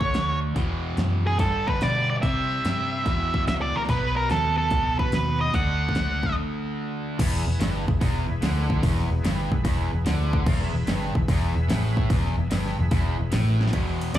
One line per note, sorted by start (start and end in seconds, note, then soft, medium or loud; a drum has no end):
0.00 0.13 C#2 medium
0.00 0.55 D3 medium
0.00 0.56 A3 medium
0.00 0.56 D4 medium
0.00 0.38 C#5 medium
0.00 kick medium
0.14 0.55 D2 medium
0.14 snare loud
0.14 open hi-hat soft
0.55 1.37 E2 medium
0.55 0.96 E2 medium
0.55 1.39 B2 medium
0.55 1.40 E3 medium
0.55 kick medium
0.55 open hi-hat soft
0.97 1.38 F#2 medium
0.97 snare medium
0.97 open hi-hat soft
1.27 1.39 G#4 medium
1.38 2.21 G2 medium
1.38 1.80 G2 medium
1.38 2.22 D3 medium
1.38 2.23 G3 medium
1.38 1.68 A4 medium
1.38 kick loud
1.38 open hi-hat soft
1.67 1.82 B4 medium
1.67 kick medium
1.81 2.22 B2 loud
1.81 2.09 D5 medium
1.81 snare loud
1.81 open hi-hat medium
2.10 2.15 D5 medium
2.22 3.05 C3 medium
2.22 2.63 C3 medium
2.22 3.06 G3 medium
2.22 3.06 C4 medium
2.22 3.43 E5 medium
2.22 kick loud
2.22 open hi-hat soft
2.65 3.05 G2 medium
2.65 snare loud
2.65 open hi-hat soft
3.04 3.88 E2 medium
3.04 3.46 E2 medium
3.04 3.87 B2 medium
3.04 3.89 E3 medium
3.04 kick loud
3.04 open hi-hat soft
3.34 kick medium
3.48 3.74 C#2 loud
3.48 3.53 E5 loud
3.48 snare loud
3.48 open hi-hat medium
3.62 3.76 D5 medium
3.76 3.81 A#4 medium
3.76 muted fingered electric bass stroke soft
3.84 snare soft
3.88 4.29 B1 medium
3.88 5.53 B2 medium
3.88 5.54 F#3 medium
3.88 5.55 B3 medium
3.88 4.16 B4 medium
3.88 kick loud
3.88 open hi-hat soft
4.17 4.31 A#4 medium
4.30 4.70 D#2 medium
4.30 4.56 A4 medium
4.30 snare loud
4.30 open hi-hat soft
4.58 4.99 A4 medium
4.70 4.98 C#2 medium
4.70 kick loud
4.70 open hi-hat soft
4.99 5.38 B4 loud
4.99 muted fingered electric bass stroke soft
4.99 kick medium
5.12 5.53 D#2 medium
5.12 snare loud
5.12 open hi-hat medium
5.41 5.54 D#5 loud
5.48 snare soft
5.53 5.94 D2 medium
5.53 7.18 D3 medium
5.53 7.19 A3 medium
5.53 7.19 D4 medium
5.53 6.33 F#5 medium
5.53 kick loud
5.53 open hi-hat soft
5.89 kick medium
5.95 6.36 C#2 medium
5.95 snare loud
5.95 open hi-hat soft
6.23 kick medium
6.31 snare soft
7.19 7.45 E1 loud
7.19 7.46 E2 loud
7.19 10.44 E4 medium
7.19 10.44 G#4 medium
7.19 10.44 B4 medium
7.19 kick loud
7.19 open hi-hat medium
7.19 crash loud
7.46 7.59 E1 medium
7.46 7.58 E2 medium
7.60 7.86 G1 medium
7.60 7.87 G2 medium
7.60 snare loud
7.60 open hi-hat medium
7.88 8.00 E1 medium
7.88 7.98 E2 medium
7.88 kick medium
8.01 8.27 E1 medium
8.01 8.28 E2 loud
8.01 kick loud
8.01 open hi-hat medium
8.29 8.41 E1 medium
8.29 8.39 E2 medium
8.42 8.80 D2 loud
8.42 8.83 D3 loud
8.42 snare loud
8.42 open hi-hat medium
8.70 kick medium
8.83 9.09 E1 medium
8.83 9.10 E2 loud
8.83 kick medium
8.83 open hi-hat medium
8.99 snare soft
9.11 9.23 E1 medium
9.11 9.22 E2 medium
9.24 9.50 G1 medium
9.24 9.51 G2 medium
9.24 snare loud
9.24 open hi-hat medium
9.51 9.64 E1 medium
9.51 9.63 E2 medium
9.51 kick medium
9.64 9.90 E1 medium
9.64 9.91 E2 medium
9.64 kick loud
9.64 open hi-hat medium
9.92 10.05 E1 medium
9.92 10.03 E2 medium
10.06 10.44 D2 medium
10.06 10.46 D3 medium
10.06 snare loud
10.06 open hi-hat medium
10.33 kick medium
10.46 10.72 E1 medium
10.46 10.73 E2 medium
10.46 10.61 A4 medium
10.46 10.61 C5 medium
10.46 10.60 F5 medium
10.46 kick loud
10.46 crash medium
10.61 13.71 G#4 medium
10.61 13.71 B4 medium
10.61 13.71 E5 medium
10.61 snare soft
10.73 10.86 E1 medium
10.73 10.85 E2 medium
10.87 11.13 G1 medium
10.87 11.14 G2 medium
10.87 snare loud
10.87 open hi-hat medium
11.03 snare soft
11.15 11.27 E1 medium
11.15 11.26 E2 medium
11.15 kick medium
11.28 11.54 E1 medium
11.28 11.55 E2 loud
11.28 kick loud
11.28 open hi-hat medium
11.56 11.68 E1 medium
11.56 11.67 E2 medium
11.69 12.07 A1 medium
11.69 12.09 A2 medium
11.69 snare loud
11.69 open hi-hat medium
11.97 kick medium
12.10 12.36 E1 medium
12.10 12.37 E2 loud
12.10 kick loud
12.10 open hi-hat medium
12.25 snare soft
12.37 12.50 E1 medium
12.37 12.48 E2 medium
12.51 12.77 G1 medium
12.51 12.77 G2 medium
12.51 snare loud
12.51 open hi-hat medium
12.66 snare soft
12.78 12.91 E1 medium
12.78 12.89 E2 medium
12.91 13.17 E1 medium
12.91 13.18 E2 loud
12.91 kick loud
12.91 open hi-hat medium
13.19 13.32 E1 medium
13.19 13.30 E2 medium
13.32 13.71 A1 loud
13.32 13.73 A2 medium
13.32 snare loud
13.32 open hi-hat medium
13.61 snare medium
13.68 snare medium
13.73 14.13 E2 medium
13.73 14.12 E2 medium
13.73 14.12 B2 medium
13.73 14.19 E4 medium
13.73 14.19 G#4 medium
13.73 14.19 B4 medium
13.73 kick medium
13.73 ride medium
14.01 ride medium
14.14 14.19 D#2 medium
14.14 14.19 E2 medium
14.14 14.19 C#3 medium
14.14 14.19 E5 medium
14.14 snare loud
14.14 ride medium